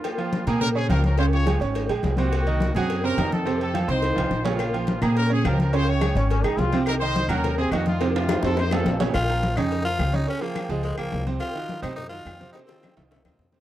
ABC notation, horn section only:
X:1
M:4/4
L:1/8
Q:1/4=211
K:Bbm
V:1 name="Horn section"
[B,F]3 [CA] [DB] [CA] [DB] [DB] | [Fc] [Fd]2 z4 [B,G]- | [B,G]3 [CA]2 [DB]2 [C=A]- | [C=A] [CA]2 [Ec]4 [B,F]- |
[B,F]3 [CA] [DB] [CA] [DB] [DB] | [Fc] [Fd]2 z4 z | [EB] [Ec]2 [DB]2 [CA] [B,G] [=A,F]- | [=A,F] [A,F]2 [C=A] [Ec] [CA]2 z |
z8 | z8 | z8 | z8 |]